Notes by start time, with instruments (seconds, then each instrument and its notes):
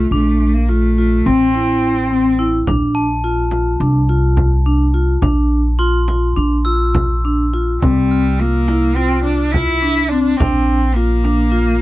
Already playing: cello A3
0.11 upright bass A#1, cello A3, vibraphone D4
0.54 cello A#3
0.69 cello A3, vibraphone F4
0.98 vibraphone F4
1.26 upright bass A1, cello C4, vibraphone C4
1.55 vibraphone E4
2.11 vibraphone C4
2.39 vibraphone E4
2.67 upright bass A#1, vibraphone D4, frame drum
2.95 glockenspiel A5
3.24 vibraphone F4
3.51 vibraphone F4, frame drum
3.80 upright bass C2, vibraphone D4
4.09 vibraphone F4
4.37 frame drum
4.66 vibraphone D4
4.94 vibraphone F4
5.22 upright bass A#1, vibraphone D4, frame drum
5.79 vibraphone F4, glockenspiel C6, frame drum
6.08 vibraphone F4, frame drum
6.37 upright bass A#1, vibraphone D4, frame drum
6.65 vibraphone F4, glockenspiel E6
6.95 frame drum
7.24 vibraphone D4, frame drum
7.53 vibraphone F4, frame drum
7.82 upright bass C2, cello G3, vibraphone C4, frame drum
8.11 glockenspiel F6, frame drum
8.39 cello A#3, vibraphone F4
8.68 vibraphone E4, frame drum
8.96 cello C4, vibraphone F4
9.24 cello D4, frame drum
9.52 cello E4, vibraphone F4, frame drum
9.82 vibraphone D4, frame drum
10.09 vibraphone C4, cello D4
10.37 upright bass A#1, cello C4, vibraphone D4, frame drum
10.69 frame drum
10.94 cello A#3, vibraphone F4
11.24 vibraphone D4, frame drum
11.52 vibraphone F4